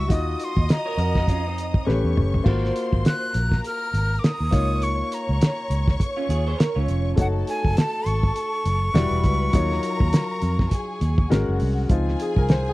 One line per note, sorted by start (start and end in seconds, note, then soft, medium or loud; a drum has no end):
0.00 0.10 C#2 medium
0.00 0.12 G3 medium
0.00 0.10 E4 medium
0.00 0.08 F#4 medium
0.00 0.10 D5 medium
0.00 0.15 C#6 medium
0.08 0.34 D#2 medium
0.08 1.83 D#4 medium
0.08 1.84 F4 medium
0.08 1.83 F#4 medium
0.08 1.84 D#5 medium
0.08 1.83 D#6 medium
0.08 kick loud
0.08 closed hi-hat medium
0.14 0.46 D#6 medium
0.40 closed hi-hat medium
0.44 0.73 C6 medium
0.57 0.67 D#2 medium
0.57 kick medium
0.69 1.88 A#5 medium
0.69 snare loud
0.69 closed hi-hat medium
0.86 0.97 A#4 soft
0.86 0.98 C#5 medium
0.98 1.83 F2 medium
0.98 1.15 F#4 medium
0.98 1.15 A#4 medium
0.98 closed hi-hat medium
1.16 1.28 D#4 medium
1.16 1.27 F#4 medium
1.16 kick medium
1.16 snare soft
1.28 1.45 C#4 soft
1.28 1.44 F4 medium
1.28 kick medium
1.28 closed hi-hat medium
1.46 1.86 C4 soft
1.46 1.85 D#4 soft
1.58 closed hi-hat medium
1.74 kick medium
1.86 2.01 A1 medium
1.86 2.46 A3 medium
1.86 2.46 C#4 medium
1.86 2.46 G4 medium
1.86 2.46 B4 medium
1.86 2.44 C#5 medium
1.86 2.44 C#6 medium
1.86 snare soft
2.04 2.14 E2 medium
2.16 2.41 F#1 medium
2.16 mid tom medium
2.34 floor tom medium
2.44 2.70 G#1 loud
2.44 4.47 A#3 medium
2.44 4.48 F4 medium
2.44 4.48 F#4 medium
2.44 3.32 C5 medium
2.44 4.49 C5 medium
2.44 3.32 C6 medium
2.44 kick loud
2.44 crash medium
2.65 snare soft
2.76 closed hi-hat medium
2.93 3.03 G#1 medium
2.93 kick medium
3.05 3.61 F#6 loud
3.05 snare loud
3.05 closed hi-hat medium
3.34 3.59 A#1 medium
3.34 4.50 A#4 medium
3.34 4.50 A#5 medium
3.34 closed hi-hat medium
3.52 kick medium
3.52 snare soft
3.64 4.21 F6 medium
3.64 closed hi-hat medium
3.94 4.18 G#1 medium
3.94 closed hi-hat medium
4.19 4.26 D6 medium
4.24 4.85 D#6 loud
4.24 snare medium
4.24 closed hi-hat medium
4.40 4.50 D#2 medium
4.51 5.01 C#2 medium
4.51 6.84 A#3 medium
4.51 6.84 D#4 medium
4.51 6.85 F4 medium
4.51 7.14 C#5 medium
4.51 6.85 C#5 medium
4.51 7.14 C#6 medium
4.51 kick medium
4.51 closed hi-hat medium
4.82 5.16 C#6 medium
4.82 closed hi-hat medium
5.12 6.01 A#5 medium
5.12 closed hi-hat medium
5.29 5.39 C#2 medium
5.41 snare loud
5.41 closed hi-hat medium
5.70 5.94 C#2 medium
5.70 closed hi-hat medium
5.88 kick medium
5.88 snare soft
6.00 kick medium
6.00 closed hi-hat medium
6.17 6.29 C#4 medium
6.17 6.29 F4 medium
6.29 6.53 D#2 medium
6.29 6.46 F4 medium
6.29 6.46 G#4 medium
6.29 closed hi-hat medium
6.47 6.59 G#4 medium
6.47 6.58 C5 medium
6.59 6.75 A#4 medium
6.59 snare medium
6.59 closed hi-hat medium
6.75 6.86 C#2 medium
6.75 7.16 C#4 medium
6.75 7.16 F4 medium
6.88 7.13 F1 medium
6.88 closed hi-hat medium
7.16 7.42 F#1 loud
7.16 8.91 A3 medium
7.16 8.91 D#4 medium
7.16 8.91 F#4 medium
7.16 8.91 A4 medium
7.16 8.92 C#5 medium
7.16 8.91 A5 medium
7.16 kick loud
7.16 closed hi-hat medium
7.21 7.27 F#5 medium
7.47 7.79 G#5 medium
7.47 closed hi-hat medium
7.65 7.75 F#1 loud
7.65 kick medium
7.77 8.08 A5 loud
7.77 snare loud
7.77 closed hi-hat medium
8.06 8.31 G#1 medium
8.06 11.31 C#6 medium
8.06 closed hi-hat medium
8.23 kick medium
8.36 closed hi-hat medium
8.65 8.90 F#1 medium
8.65 closed hi-hat medium
8.94 9.08 E1 medium
8.94 9.54 G3 medium
8.94 9.54 E4 medium
8.94 9.54 F#4 medium
8.94 9.53 B4 medium
8.94 9.54 D5 medium
8.94 9.53 B5 medium
8.94 snare medium
8.94 closed hi-hat medium
9.11 9.22 E1 medium
9.24 9.49 C#2 medium
9.24 kick medium
9.24 closed hi-hat medium
9.53 9.78 D#2 loud
9.53 11.27 F#3 medium
9.53 11.27 D#4 medium
9.53 11.28 F4 medium
9.53 10.70 A#4 medium
9.53 11.28 C#5 medium
9.53 10.70 A#5 loud
9.53 kick loud
9.53 closed hi-hat medium
9.72 snare soft
9.83 closed hi-hat medium
10.00 10.11 D#2 medium
10.00 kick medium
10.13 snare loud
10.13 closed hi-hat medium
10.42 10.67 F2 medium
10.42 closed hi-hat medium
10.59 kick medium
10.59 snare soft
10.71 11.30 G#4 medium
10.71 11.30 G#5 medium
10.71 kick medium
10.71 closed hi-hat medium
11.01 11.26 D#2 medium
11.01 closed hi-hat medium
11.18 kick loud
11.30 11.45 G#1 medium
11.30 11.90 G#3 medium
11.30 11.90 C#4 medium
11.30 11.89 F#4 medium
11.30 11.90 F#4 medium
11.30 11.90 A#4 medium
11.30 11.89 F#5 medium
11.30 snare loud
11.30 closed hi-hat medium
11.48 11.59 F#1 medium
11.60 11.85 C2 medium
11.60 open hi-hat medium
11.89 12.14 C#2 loud
11.89 12.31 F3 soft
11.89 12.31 C4 soft
11.89 12.32 D#4 medium
11.89 12.21 F4 medium
11.89 12.73 G#4 medium
11.89 12.73 G#5 loud
11.89 kick loud
11.89 closed hi-hat medium
12.08 snare soft
12.20 12.27 G#4 medium
12.20 closed hi-hat medium
12.37 12.73 C2 medium
12.37 12.50 A#4 medium
12.37 kick medium
12.49 12.68 C5 medium
12.49 snare loud
12.49 closed hi-hat medium
12.69 12.73 G#4 medium